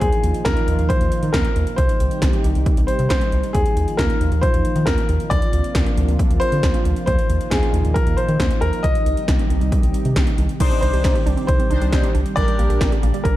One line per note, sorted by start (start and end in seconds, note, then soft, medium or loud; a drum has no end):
0.00 0.11 D#2 loud
0.00 1.76 A#2 medium
0.00 1.76 D#3 medium
0.00 1.76 F3 medium
0.00 1.76 D#4 medium
0.00 1.76 F4 medium
0.00 0.46 G#4 medium
0.00 kick loud
0.00 closed hi-hat medium
0.13 closed hi-hat medium
0.24 0.33 D#2 loud
0.24 closed hi-hat medium
0.34 closed hi-hat medium
0.45 0.55 D#2 loud
0.45 0.91 A#4 loud
0.45 kick loud
0.45 snare loud
0.45 closed hi-hat medium
0.57 closed hi-hat soft
0.68 0.77 D#2 loud
0.68 closed hi-hat medium
0.79 0.88 D#2 loud
0.79 closed hi-hat soft
0.89 1.35 C5 loud
0.89 kick loud
0.89 closed hi-hat medium
1.01 1.10 D#2 loud
1.01 closed hi-hat medium
1.12 closed hi-hat medium
1.23 1.32 D#3 medium
1.23 closed hi-hat medium
1.33 1.43 D#2 loud
1.33 1.79 A#4 medium
1.33 kick loud
1.33 snare loud
1.33 closed hi-hat medium
1.45 closed hi-hat medium
1.56 1.65 D#2 loud
1.56 closed hi-hat medium
1.67 closed hi-hat soft
1.76 1.87 C2 loud
1.76 3.53 C3 medium
1.76 3.53 D#3 medium
1.76 3.53 G3 medium
1.76 5.27 D#4 medium
1.76 3.53 G4 medium
1.76 2.39 C5 medium
1.76 kick loud
1.76 closed hi-hat medium
1.89 closed hi-hat medium
2.00 2.09 C2 loud
2.00 closed hi-hat medium
2.11 closed hi-hat medium
2.22 2.32 C2 medium
2.22 kick loud
2.22 snare loud
2.22 closed hi-hat medium
2.33 closed hi-hat soft
2.44 2.54 C2 loud
2.44 closed hi-hat medium
2.55 2.65 C2 loud
2.55 closed hi-hat soft
2.66 kick loud
2.66 closed hi-hat medium
2.77 2.87 C2 medium
2.77 closed hi-hat medium
2.87 3.08 C5 medium
2.87 closed hi-hat medium
2.99 3.09 C3 loud
2.99 closed hi-hat medium
3.09 3.20 C2 loud
3.09 3.55 C5 medium
3.09 kick loud
3.09 snare loud
3.09 closed hi-hat medium
3.21 closed hi-hat medium
3.32 3.42 C2 loud
3.32 closed hi-hat medium
3.43 closed hi-hat soft
3.53 3.64 D#2 loud
3.53 5.29 A#2 medium
3.53 5.29 D#3 medium
3.53 8.80 F3 medium
3.53 5.29 F4 medium
3.53 3.99 G#4 medium
3.53 kick loud
3.53 closed hi-hat medium
3.66 closed hi-hat medium
3.76 3.86 D#2 medium
3.76 closed hi-hat medium
3.88 closed hi-hat medium
3.97 4.08 D#2 loud
3.97 4.43 A#4 medium
3.97 kick loud
3.97 snare loud
3.97 closed hi-hat medium
4.10 closed hi-hat soft
4.21 4.30 D#2 loud
4.21 closed hi-hat medium
4.32 4.41 D#2 loud
4.32 closed hi-hat soft
4.41 4.83 C5 loud
4.41 kick loud
4.41 closed hi-hat medium
4.54 4.63 D#2 medium
4.54 closed hi-hat medium
4.65 closed hi-hat medium
4.76 4.85 D#3 medium
4.76 closed hi-hat medium
4.86 4.96 D#2 loud
4.86 5.32 A#4 medium
4.86 kick loud
4.86 snare loud
4.86 closed hi-hat medium
4.98 closed hi-hat soft
5.09 5.18 D#2 loud
5.09 closed hi-hat medium
5.20 closed hi-hat soft
5.30 5.40 D2 loud
5.30 7.06 C3 medium
5.30 7.06 A#3 medium
5.30 7.06 D4 medium
5.30 8.80 F4 medium
5.30 5.93 D5 medium
5.30 kick loud
5.30 closed hi-hat medium
5.42 closed hi-hat medium
5.53 5.62 D2 medium
5.53 closed hi-hat medium
5.64 closed hi-hat medium
5.75 5.85 D2 loud
5.75 kick loud
5.75 snare loud
5.75 closed hi-hat medium
5.86 closed hi-hat soft
5.97 6.07 D2 loud
5.97 closed hi-hat medium
6.08 6.18 D2 loud
6.08 closed hi-hat soft
6.19 kick loud
6.19 closed hi-hat medium
6.30 6.40 D2 loud
6.30 closed hi-hat medium
6.40 6.81 C5 loud
6.40 closed hi-hat medium
6.52 6.62 D3 medium
6.52 closed hi-hat medium
6.63 6.73 D2 loud
6.63 kick loud
6.63 snare loud
6.63 closed hi-hat medium
6.74 closed hi-hat medium
6.85 6.95 D2 loud
6.85 closed hi-hat medium
6.96 closed hi-hat soft
7.06 7.17 D#2 loud
7.06 8.82 A#2 medium
7.06 8.82 D#3 medium
7.06 10.57 D#4 medium
7.06 7.52 C5 medium
7.06 kick loud
7.06 closed hi-hat medium
7.19 closed hi-hat medium
7.30 7.39 D#2 loud
7.30 closed hi-hat medium
7.41 closed hi-hat medium
7.50 7.61 D#2 loud
7.50 7.96 G#4 medium
7.50 kick loud
7.50 snare loud
7.50 closed hi-hat medium
7.63 closed hi-hat soft
7.74 7.83 D#2 loud
7.74 closed hi-hat medium
7.85 7.94 D#2 medium
7.85 closed hi-hat soft
7.94 8.18 A#4 medium
7.94 kick loud
7.94 closed hi-hat medium
8.07 8.16 D#2 loud
8.07 closed hi-hat medium
8.17 8.63 C5 loud
8.17 closed hi-hat medium
8.29 8.38 D#3 loud
8.29 closed hi-hat medium
8.40 8.49 D#2 loud
8.40 kick loud
8.40 snare loud
8.40 closed hi-hat medium
8.51 closed hi-hat medium
8.61 8.71 D#2 loud
8.61 8.84 A#4 medium
8.61 closed hi-hat medium
8.73 closed hi-hat soft
8.83 8.93 C2 loud
8.83 10.58 C3 medium
8.83 10.59 D#3 medium
8.83 10.59 G3 medium
8.83 10.59 G4 medium
8.83 10.12 D#5 loud
8.83 kick loud
8.83 closed hi-hat medium
8.95 closed hi-hat medium
9.06 9.15 C2 loud
9.06 closed hi-hat medium
9.17 closed hi-hat medium
9.28 9.37 C2 loud
9.28 kick loud
9.28 snare loud
9.28 closed hi-hat medium
9.39 closed hi-hat soft
9.50 9.59 C2 medium
9.50 closed hi-hat medium
9.61 9.70 C2 medium
9.61 closed hi-hat soft
9.72 kick loud
9.72 closed hi-hat medium
9.83 9.93 C2 medium
9.83 closed hi-hat medium
9.94 closed hi-hat medium
10.05 10.15 C3 loud
10.05 closed hi-hat medium
10.16 10.26 C2 loud
10.16 kick loud
10.16 snare loud
10.16 closed hi-hat medium
10.27 closed hi-hat medium
10.38 10.48 C2 loud
10.38 closed hi-hat medium
10.49 closed hi-hat soft
10.60 10.70 C2 loud
10.60 12.35 C3 medium
10.60 10.68 D#3 medium
10.60 12.35 D#3 medium
10.60 13.37 G3 medium
10.60 11.13 D4 medium
10.60 11.13 D#4 medium
10.60 13.37 G4 medium
10.60 11.13 C5 medium
10.60 12.35 D5 medium
10.60 kick loud
10.60 closed hi-hat medium
10.60 crash medium
10.71 10.79 C4 medium
10.71 closed hi-hat medium
10.81 10.92 C2 medium
10.81 10.90 D4 medium
10.81 11.44 C5 medium
10.81 closed hi-hat medium
10.93 11.03 C2 loud
10.93 11.01 G4 medium
10.93 closed hi-hat medium
11.04 11.14 C2 medium
11.04 11.12 D#5 medium
11.04 kick loud
11.04 snare loud
11.04 closed hi-hat medium
11.15 11.23 G4 medium
11.15 closed hi-hat soft
11.26 11.36 C2 loud
11.26 11.34 D4 medium
11.26 closed hi-hat medium
11.37 11.45 C4 medium
11.37 closed hi-hat soft
11.47 11.58 C2 loud
11.47 11.56 D#3 medium
11.47 12.39 C5 medium
11.47 kick loud
11.47 closed hi-hat medium
11.59 11.67 C4 medium
11.59 closed hi-hat medium
11.70 11.80 C2 medium
11.70 11.78 D4 medium
11.70 12.10 D4 medium
11.70 12.10 D#4 medium
11.70 12.10 C5 medium
11.70 closed hi-hat medium
11.81 11.91 C2 medium
11.81 11.89 G4 medium
11.81 closed hi-hat medium
11.92 12.02 C2 loud
11.92 kick loud
11.92 snare loud
11.92 closed hi-hat medium
12.03 12.11 G4 medium
12.03 closed hi-hat medium
12.15 12.24 C2 loud
12.15 12.22 D4 medium
12.15 closed hi-hat medium
12.26 closed hi-hat soft
12.36 12.46 A#1 loud
12.36 13.37 A#2 medium
12.36 12.45 D3 medium
12.36 13.37 D3 medium
12.36 13.37 D4 medium
12.36 12.89 D4 medium
12.36 12.89 G4 medium
12.36 12.89 A#4 medium
12.36 13.27 D5 loud
12.36 kick loud
12.36 closed hi-hat medium
12.48 12.56 G3 medium
12.48 closed hi-hat medium
12.59 12.68 A#1 loud
12.59 12.67 A#3 medium
12.59 closed hi-hat medium
12.70 12.79 A#1 medium
12.70 12.78 G4 medium
12.70 closed hi-hat medium
12.81 12.90 A#1 loud
12.81 12.89 D5 medium
12.81 kick loud
12.81 snare loud
12.81 closed hi-hat medium
12.92 13.00 G4 medium
12.92 closed hi-hat soft
13.03 13.12 A#1 loud
13.03 13.11 A#3 medium
13.03 closed hi-hat medium
13.14 13.22 G3 medium
13.14 closed hi-hat soft
13.24 13.34 A#1 loud
13.24 13.33 D3 medium
13.24 13.37 A#4 medium
13.24 kick loud
13.24 closed hi-hat medium